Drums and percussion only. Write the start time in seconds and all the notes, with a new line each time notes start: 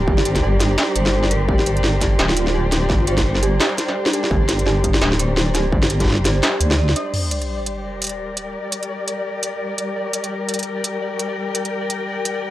0.08 kick
0.18 snare
0.25 closed hi-hat
0.35 kick, snare, closed hi-hat
0.60 snare, closed hi-hat
0.78 snare
0.83 snare
0.96 closed hi-hat
1.06 snare
1.23 snare
1.31 closed hi-hat
1.49 kick
1.59 snare
1.66 closed hi-hat
1.77 closed hi-hat
1.84 snare
2.01 kick, snare, closed hi-hat
2.19 snare
2.29 snare
2.37 closed hi-hat
2.47 snare
2.72 snare, closed hi-hat
2.90 kick, snare
3.07 closed hi-hat
3.18 kick, snare, closed hi-hat
3.35 snare
3.43 closed hi-hat
3.60 snare
3.78 snare, closed hi-hat
3.88 snare
4.06 snare
4.13 closed hi-hat
4.24 snare
4.31 kick
4.49 snare, closed hi-hat
4.59 closed hi-hat
4.66 snare
4.84 kick, closed hi-hat
4.94 snare
5.02 snare
5.12 snare
5.19 closed hi-hat
5.37 snare
5.55 snare, closed hi-hat
5.72 kick
5.83 snare
5.90 closed hi-hat
6.00 kick, snare, closed hi-hat
6.02 snare
6.04 snare
6.06 snare
6.08 snare
6.10 snare
6.12 snare
6.15 snare
6.25 snare, closed hi-hat
6.43 snare
6.61 closed hi-hat
6.71 snare
6.89 snare
6.96 closed hi-hat
7.14 crash
7.31 closed hi-hat
7.42 closed hi-hat
7.66 closed hi-hat
8.02 closed hi-hat
8.04 closed hi-hat
8.07 closed hi-hat
8.09 closed hi-hat
8.37 closed hi-hat
8.72 closed hi-hat
8.83 closed hi-hat
9.08 closed hi-hat
9.43 closed hi-hat
9.78 closed hi-hat
10.13 closed hi-hat
10.24 closed hi-hat
10.49 closed hi-hat
10.54 closed hi-hat
10.59 closed hi-hat
10.63 closed hi-hat
10.84 closed hi-hat
11.19 closed hi-hat
11.55 closed hi-hat
11.65 closed hi-hat
11.90 closed hi-hat
12.25 closed hi-hat